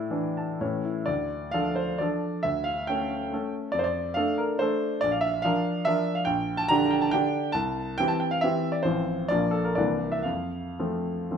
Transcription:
Already playing: A2 E4 D5
0.10 E3 D4
0.37 A5
0.61 A2 E3 C#4 C#5
0.85 E4
1.06 D2 D5
1.51 F3 D4 A4 F5
1.76 C5
1.99 F3 D4 A4 D5
2.43 D2 E5
2.64 F5
2.87 A3 C#4 A4 G5
3.33 A3 C#4 A4
3.72 F2 D5
3.79 C5
3.84 D5
4.14 A3 D4 A4 F5
4.38 A#4
4.59 A3 D4 A4 C5
5.01 A#1 D5
5.11 F5
5.21 E5
5.42 F3 D4 A#4 F5
5.85 F3 D4 A#4 E5
6.15 F5
6.25 A#1 G5
6.57 A5
6.68 D3 D4 G4 A#5
6.91 G5
7.01 A5
7.11 D3 D4 G4 G5
7.52 C2 A5
7.98 E3 C4 G4 G5
8.08 A5
8.20 G5
8.31 F5
8.41 E3 C4 G4 E5
8.72 D5
8.83 A1 F3 C4 F4 C5
9.28 A#1 F3 A#3 F4 D5
9.51 A4
9.64 A#4
9.75 C2 E3 A#3 D4 D5
10.12 E5
10.23 F2 F5
10.79 F3 A3 C4
11.31 F3 A3 C4

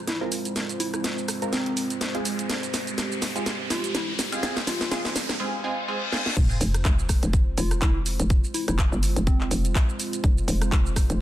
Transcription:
Already playing: G#3 C4 F4 C5, riser
0.07 E4, snare, closed hi-hat, shaker
0.21 G#3 C4 F4 A#4
0.32 open hi-hat, shaker
0.45 closed hi-hat, shaker
0.56 snare, closed hi-hat, shaker
0.69 closed hi-hat, shaker
0.80 E4, open hi-hat, shaker
0.94 E4, cross-stick, closed hi-hat, shaker
1.04 snare, closed hi-hat, shaker
1.18 shaker
1.28 cross-stick, open hi-hat, shaker
1.42 G#3 C4 F4 A#4, closed hi-hat, shaker
1.53 C4, snare, closed hi-hat, shaker
1.66 closed hi-hat
1.77 open hi-hat, shaker
1.90 closed hi-hat, shaker
2.01 snare, closed hi-hat, shaker
2.15 G#3 C4 F4 G#4, closed hi-hat
2.25 open hi-hat, shaker
2.39 closed hi-hat, shaker
2.49 G4, snare, closed hi-hat, shaker
2.63 closed hi-hat, shaker
2.74 snare, open hi-hat, shaker
2.87 closed hi-hat, shaker
2.98 snare, closed hi-hat, shaker
3.12 shaker
3.22 snare, open hi-hat, shaker
3.36 G#3 C4 F4 G#4, closed hi-hat, shaker
3.46 snare, closed hi-hat, shaker
3.70 F4, snare, open hi-hat, shaker
3.84 closed hi-hat, shaker
3.94 E4, snare, closed hi-hat, shaker
4.19 snare, open hi-hat, shaker
4.32 G#3 C4 F4 G#4, closed hi-hat, shaker
4.43 G#3 C4 F4 G#4, snare, closed hi-hat, shaker
4.57 snare, closed hi-hat, shaker
4.67 F4, snare, open hi-hat, shaker
4.81 snare, closed hi-hat, shaker
4.91 G#3 C4 F4 G#4, snare, closed hi-hat, shaker
5.05 snare, shaker
5.16 snare, open hi-hat, shaker
5.29 snare, closed hi-hat, shaker
5.40 G#3 C4 F4 G#4, reverse cymbal
5.64 G#3 C4 F4 G#4
5.88 G#3 C4 F4 G#4
6.12 G#3 C4 F4 G#4, snare
6.26 snare
6.37 F1 G#3 C4 F4 C5, kick, closed hi-hat, crash, sub drop, shaker
6.51 shaker
6.61 F1, open hi-hat, shaker
6.74 cross-stick, closed hi-hat, shaker
6.85 F1, kick, clap, closed hi-hat, shaker
6.99 shaker
7.09 kick, cross-stick, open hi-hat, shaker
7.23 F1, closed hi-hat, shaker
7.33 kick, closed hi-hat, shaker
7.57 F1 F4, open hi-hat, shaker
7.71 cross-stick, closed hi-hat, shaker
7.82 F1 E4, kick, clap, closed hi-hat, shaker
8.06 open hi-hat, shaker
8.20 F1, closed hi-hat, shaker
8.30 kick, closed hi-hat, shaker
8.44 shaker
8.54 E4, open hi-hat, shaker
8.68 F1 E4, cross-stick, closed hi-hat, shaker
8.79 kick, clap, closed hi-hat, shaker
8.92 G1, shaker
9.03 open hi-hat, shaker
9.16 F1, closed hi-hat, shaker
9.27 C4, kick, closed hi-hat, shaker
9.41 clap
9.51 F1, open hi-hat, shaker
9.65 closed hi-hat, shaker
9.75 kick, clap, closed hi-hat, shaker
9.89 shaker
10.00 open hi-hat, shaker
10.13 closed hi-hat, shaker
10.24 F1, kick, closed hi-hat, shaker
10.38 shaker
10.48 F1, open hi-hat, shaker
10.62 cross-stick, closed hi-hat, shaker
10.72 F1, kick, clap, closed hi-hat, shaker
10.86 shaker
10.96 kick, cross-stick, open hi-hat, shaker
11.10 F1, closed hi-hat, shaker

